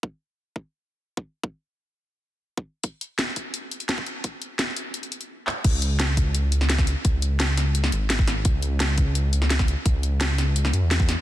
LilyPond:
<<
  \new Staff \with { instrumentName = "Detuned saw bass" } { \clef bass \time 4/4 \key cis \minor \tempo 4 = 171 r1 | r1 | r1 | r1 |
cis,2.~ cis,8. r16 | cis,2~ cis,8 gis,,4. | cis,2.~ cis,8. r16 | cis,2~ cis,8 fis,16 e,4 r16 | }
  \new DrumStaff \with { instrumentName = "Drums" } \drummode { \time 4/4 bd4 r8 bd8 r4 r16 bd8. | bd4 r4 r4 r16 bd8. | <hh bd>8 hh8 <hh sn>8 <hh bd>8 hh8 hh16 hh16 <hh sn>16 bd16 hh8 | <hh bd>8 hh8 <hh sn>8 hh8 hh16 hh16 hh16 hh16 r8 hc8 |
<cymc hh bd>8 hh8 <hh sn>8 <hh bd>8 hh8 hh16 sn16 <hh sn>16 <bd sn>16 hh8 | <hh bd>8 hh8 <hh sn>8 <hh sn>8 hh16 sn16 hh8 <hh sn>16 bd16 <hh sn>8 | <hh bd>8 hh8 <hh sn>8 <hh bd>8 hh8 hh16 sn16 <hh sn>16 <bd sn>16 hh8 | <hh bd>8 hh8 <hh sn>8 <hh sn>8 hh16 sn16 hh8 <hh sn>16 bd16 <hh sn>8 | }
>>